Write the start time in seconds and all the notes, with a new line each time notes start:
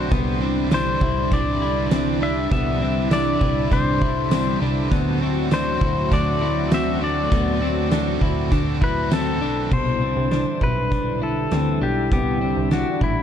Already playing: B1 D3 C4 D4 F#4 C5
0.11 C2 C3 E3 G3 B3 D4 E4 B4, kick, closed hi-hat
0.41 G3 C4 D4 E4 B4
0.71 G3 D4 E4 C5, snare, closed hi-hat, tambourine
1.01 C2 G3 D4 E4, kick
1.31 C2 C3 E3 G3 D4 E4 B4 D5, kick, closed hi-hat
1.61 G3 D4 E4 B4
1.91 G3 C4 D4 E4 B4, snare, closed hi-hat, tambourine
2.21 G3 D4 E4 B4 E5
2.51 C2 C3 E3 G3 B3 D4 E4 B4 E5, kick, closed hi-hat
2.81 G3 C4 D4 E4 B4
3.11 G3 D4 E4 B4 D5, snare, closed hi-hat, tambourine
3.40 C2 G3 D4 E4 B4, kick
3.71 C2 C3 E3 G3 D4 E4 C5, kick, closed hi-hat
4.02 G3 D4 E4, kick
4.30 G3 C4 D4 E4, snare, closed hi-hat, tambourine
4.61 C2 G3 D4 E4 B4
4.91 D2 D3 F#3 A3 B3 C4 F#4 A4, kick, closed hi-hat
5.21 C4 F#4 A4
5.51 A3 C4 D4 F#4 A4 C5, snare, closed hi-hat, tambourine
5.81 D2 C4 E4 F#4 A4, kick
6.11 D2 D3 A3 C4 D4 F#4 A4 D5, kick, closed hi-hat
6.41 C4 E4 F#4 A4
6.71 A3 C4 F#4 A4 E5, snare, closed hi-hat, tambourine
7.01 C4 D4 F#4 A4 D5
7.31 D2 D3 A3 B3 C4 F#4 A4, kick, closed hi-hat
7.61 C4 F#4 A4
7.91 A3 C4 D4 F#4 A4, snare, closed hi-hat, tambourine
8.21 D2 C4 E4 F#4 A4, kick
8.51 D2 D3 A3 C4 D4 F#4 A4, kick, closed hi-hat
8.80 C4 E4 F#4 A4 B4, kick
9.10 A3 C4 F#4 A4, snare, closed hi-hat, tambourine
9.39 B1 C4 D4 F#4 A4
9.71 C2 B2 D3 G3 D4 E4 C5, kick, crash
10.02 C4
10.17 C2
10.31 D4, snare, closed hi-hat
10.61 B1 E4 B4, kick
10.92 D4, kick, closed hi-hat
11.22 E4 A4
11.51 D2 C4, snare, closed hi-hat
11.81 B1 D4 G4
12.12 C2 B3 D4 G4, kick, closed hi-hat
12.41 C4
12.57 C2
12.71 D4 F#4, snare, closed hi-hat
13.01 A1 E4, kick